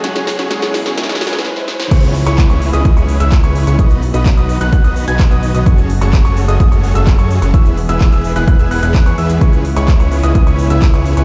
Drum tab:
CC |--------------------------------|x-------------------------------|--------------------------------|--------------------------------|
HH |x-x-o-x-x-x-o-x-x-x-o-x---------|x-x-o-x-x-x-o-x-x-x-o-x-x-x-o-x-|x-x-o-x-x-x-o-x-x-x-o-x-x-x-o-x-|x-x-o-x-x-x-o-x-x-x-o-x-x-x-o-x-|
SH |--------------------------------|x-x---x-x-x---x-x-x---x-x-x---x-|x-x---x-x-x---x-x-x---x-x-x---x-|x-x---x-x-x---x-x-x---x-x-x---x-|
CP |--------------------------------|--------x---------------x-------|--------x---------------x-------|--------x---------------x-------|
SD |o-o-o-o-o-o-o-o-ooooooooo-o-o-o-|--------------------------------|--------------------------------|--------------------------------|
BD |--------------------------------|o-------o-------o-------o-------|o-------o-------o-------o-------|o-------o-------o-------o-------|

CC |--------------------------------|--------------------------------|
HH |x-x-o-x-x-x-o-x-x-x-o-x-x-x-o-x-|x-x-o-x-x-x-o-x-x-x-o-x-x-x-o-x-|
SH |x-x---x-x-x---x-x-x---x-x-x---x-|x-x---x-x-x---x-x-x---x-x-x---x-|
CP |--------x---------------x-------|--------x---------------x-------|
SD |--------------------------------|--------------------------------|
BD |o-------o-------o-------o-------|o-------o-------o-------o-------|